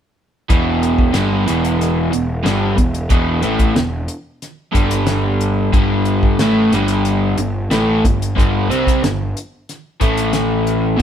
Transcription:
0.49 E1 E2 B2 E3, kick, closed hi-hat
0.83 closed hi-hat
0.98 kick
1.12 G1 G2 D3 G3, snare, closed hi-hat
1.46 E1 E2 B2 E3, closed hi-hat
1.65 closed hi-hat
1.81 snare, closed hi-hat
2.11 E1 E2 B2, closed hi-hat
2.44 G1 G2 D3 G3, snare, closed hi-hat
2.76 E1 E2 B2, kick, closed hi-hat
2.94 closed hi-hat
3.10 E1 E2 B2 E3, kick, closed hi-hat
3.42 A1 A2 E3 A3, closed hi-hat
3.59 kick, closed hi-hat
3.74 E1 E2 B2, snare, closed hi-hat
4.08 closed hi-hat
4.42 snare, closed hi-hat
4.72 G1 G2 D3 G3, kick, closed hi-hat
4.91 closed hi-hat
5.07 snare, closed hi-hat
5.41 closed hi-hat
5.72 G1 G2 D3 G3, kick, closed hi-hat
6.05 closed hi-hat
6.23 kick
6.39 A1 A2 E3 A3, snare, closed hi-hat
6.72 G1 G2 D3 G3, closed hi-hat
6.88 closed hi-hat
7.05 closed hi-hat
7.37 G1 G2 D3, closed hi-hat
7.70 A1 A2 E3 A3, snare, closed hi-hat
8.05 G1 G2 D3, kick, closed hi-hat
8.22 closed hi-hat
8.35 G1 G2 D3 G3, kick, closed hi-hat
8.69 C2 C3 G3 C4, closed hi-hat
8.87 kick, closed hi-hat
9.02 G1 G2 D3, snare, closed hi-hat
9.37 closed hi-hat
9.69 snare, closed hi-hat
10.00 A1 A2 E3 A3, kick, closed hi-hat
10.17 closed hi-hat
10.33 snare, closed hi-hat
10.67 closed hi-hat
10.97 E2 B2 E3

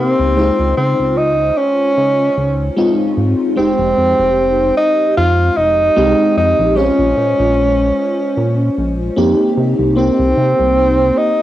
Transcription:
Already playing: C3 A#3 C4 D#4 G4
0.19 C#2
0.36 G#3 D#4 F4 C5
0.59 C#2
0.77 C#3 C4
0.99 C#2
1.17 D#4
1.57 C#4
1.97 C#3
2.38 C#2
2.77 G#3 C4 D#4 F4
3.17 G#2
3.56 F1 G#3 C4 D#4 G4
3.79 F1
3.98 F2
4.19 F1
4.77 D#4
5.17 F2 F4
5.57 F1 D#4
5.96 C2 G#3 C4 D#4 G4
6.37 F2 D#4
6.59 A#1
6.75 G#3 C#4 F4 C5
6.99 A#1
7.17 A#2
7.39 A#1
8.37 A#2
8.78 A#1
9.16 F2 A#3 C4 D#4 G4
9.57 C3
9.79 C2
9.96 A#3 C4 D#4 G4
10.19 C2
10.37 C3
10.59 C2
11.17 D#4

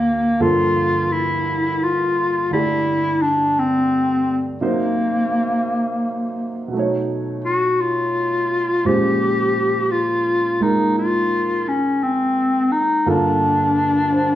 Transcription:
Already playing: D2 D3 A#3 C4 F#4 A#4
0.40 G2 D3 F3 A#3 F4 A4
1.12 E4
1.83 F4
2.51 D3 A3 D4 E4 G4
3.22 D4
3.59 C4
4.61 C3 F#3 A#3 D#4 C5
6.68 B2 F#3
6.73 A3 D#4
6.79 C#5
7.44 F#4
7.81 F4
8.85 A#2 C#3 F3 G#3 G4 C5
9.91 F4
10.60 G#3 A#3 D#4 A#4
10.98 F4
11.68 C#4
12.03 C4
12.72 D#4
13.06 G2 D3 A#3 D4 F4 A4
14.13 C5

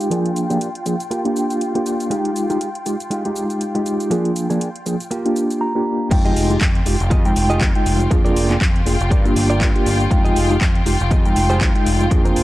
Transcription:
Already playing: F4 G5
0.01 closed hi-hat, shaker
0.10 F3 A#3 D4 F4 G#4, closed hi-hat, shaker
0.26 closed hi-hat
0.36 closed hi-hat, shaker
0.50 F3 A#3 D4 F4 G4 G#4, closed hi-hat, shaker
0.61 closed hi-hat, shaker
0.75 closed hi-hat
0.85 F3 A#3 D4 F4 G#4, muted clean electric guitar stroke, closed hi-hat, shaker
1.00 closed hi-hat, shaker
1.11 A#3 F4 G4, closed hi-hat, shaker
1.25 A#3 D4 F4 G4, closed hi-hat
1.36 shaker
1.50 closed hi-hat, shaker
1.61 closed hi-hat, shaker
1.75 A#3 D4 F4 G4, muted clean electric guitar stroke, closed hi-hat
1.86 muted clean electric guitar stroke, closed hi-hat, shaker
2.00 closed hi-hat, shaker
2.10 G#3 D#4 F4 G4, closed hi-hat, shaker
2.25 closed hi-hat
2.36 closed hi-hat, shaker
2.49 G#3 D#4 F4 G4, closed hi-hat, shaker
2.61 closed hi-hat, shaker
2.75 closed hi-hat
2.86 G#3 D#4 F4 G4, muted clean electric guitar stroke, closed hi-hat, shaker
3.00 closed hi-hat, shaker
3.10 G#3 D#4 F4 G4, closed hi-hat, shaker
3.25 G#3 D#4 F4 G4, closed hi-hat
3.36 shaker
3.50 closed hi-hat, shaker
3.61 closed hi-hat, shaker
3.75 G#3 D#4 F4 G4, muted clean electric guitar stroke, closed hi-hat
3.86 muted clean electric guitar stroke, closed hi-hat, shaker
4.00 closed hi-hat, shaker
4.10 F3 A#3 D4 F4 G#4, closed hi-hat, shaker
4.25 closed hi-hat
4.36 closed hi-hat, shaker
4.50 F3 A#3 D4 F4 G#4, closed hi-hat, shaker
4.61 closed hi-hat, shaker
4.76 closed hi-hat
4.86 F3 A#3 D4 F4 G#4, muted clean electric guitar stroke, closed hi-hat, shaker
5.00 closed hi-hat, shaker
5.11 A#3 F4 G4, closed hi-hat, shaker
5.25 A#3 D4 F4 G4, closed hi-hat
5.36 closed hi-hat, shaker
5.51 closed hi-hat, shaker
5.61 A#5
5.75 A#3 D4 F4 G4
6.11 F2 G#3 D#4 F4 G5, muted clean electric guitar stroke, kick, closed hi-hat, crash, shaker
6.25 F4 G4 G#4 D#5, closed hi-hat, shaker
6.36 F1, open hi-hat, shaker
6.50 G#3 D#4 F4 G4, closed hi-hat, shaker
6.61 F2, kick, clap, closed hi-hat, shaker
6.75 closed hi-hat
6.86 F1 G#3 D#4 F4 G4, muted clean electric guitar stroke, open hi-hat, shaker
7.00 F1, closed hi-hat, shaker
7.10 F2 F4 G4 G#4 D#5, kick, closed hi-hat, shaker
7.25 G#3 D#4 F4 G5, closed hi-hat, shaker
7.36 F1, muted clean electric guitar stroke, open hi-hat, shaker
7.50 F4 G4 G#4 D#5, closed hi-hat, shaker
7.61 F2, kick, clap, closed hi-hat, shaker
7.75 G#3 D#4 F4 G5, closed hi-hat
7.85 F1, muted clean electric guitar stroke, open hi-hat, shaker
8.00 closed hi-hat, shaker
8.11 F2 A#3 D4 F4 G#4, muted clean electric guitar stroke, kick, closed hi-hat, shaker
8.25 F4 G#4 A#4 D5, closed hi-hat, shaker
8.36 F1, open hi-hat, shaker
8.50 A#3 D4 F4 G#4, clap, shaker
8.61 F2, kick, clap, closed hi-hat, shaker
8.76 closed hi-hat
8.86 F1 A#3 D4 F4 G#4, muted clean electric guitar stroke, open hi-hat, shaker
9.00 F1, closed hi-hat, shaker
9.10 G2 F4 G4 A#4 D5, kick, closed hi-hat, shaker
9.25 A#3 D4 F4 G4, closed hi-hat, shaker
9.36 G1, muted clean electric guitar stroke, open hi-hat, shaker
9.50 F4 G4 A#4 D5, shaker
9.61 G2, kick, clap, closed hi-hat, shaker
9.75 A#3 D4 F4 G4, closed hi-hat
9.86 G1, muted clean electric guitar stroke, open hi-hat, shaker
10.00 closed hi-hat, shaker
10.11 F2 G#3 D#4 F4 G5, muted clean electric guitar stroke, kick, closed hi-hat, shaker
10.25 F4 G4 G#4 D#5, closed hi-hat, shaker
10.36 F1, open hi-hat, shaker
10.50 G#3 D#4 F4 G4, closed hi-hat, shaker
10.61 F2, kick, clap, closed hi-hat, shaker
10.75 closed hi-hat
10.86 F1 G#3 D#4 F4 G4, muted clean electric guitar stroke, open hi-hat, shaker
11.00 F1, closed hi-hat, shaker
11.11 F2 F4 G4 G#4 D#5, kick, closed hi-hat, shaker
11.25 G#3 D#4 F4 G5, closed hi-hat, shaker
11.36 F1, muted clean electric guitar stroke, open hi-hat, shaker
11.50 F4 G4 G#4 C5, closed hi-hat, shaker
11.61 F2, kick, clap, closed hi-hat, shaker
11.75 G#3 D#4 F4 G5, closed hi-hat
11.86 F1, muted clean electric guitar stroke, open hi-hat, shaker
12.01 closed hi-hat, shaker
12.11 F2 A#3 D4 F4 G#4, muted clean electric guitar stroke, kick, closed hi-hat, shaker
12.25 F4 G#4 A#4 C5, closed hi-hat, shaker
12.36 F1, open hi-hat, shaker

